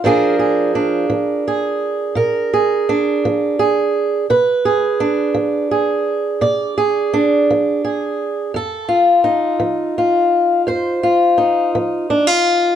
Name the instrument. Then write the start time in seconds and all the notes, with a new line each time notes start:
steel-string acoustic guitar
0.04 A#2 F3 D4 G#4 A#4
0.39 G#4
0.75 D4
1.10 F3
1.48 G#4
2.15 A#2 A#4
2.54 G#4
2.89 D4
3.25 F3
3.59 G#4
4.30 B2 B4
4.65 G#4
5.00 D4
5.34 F3
5.71 G#4
6.41 B2 D5
6.78 G#4
7.13 D4
7.50 F3
7.84 G#4
8.54 F2 A4
8.89 F4
9.24 D#4
9.60 F3
9.98 F4
10.67 F2 C5
11.03 F4
11.38 D#4
11.75 F3
12.10 D4
12.27 F4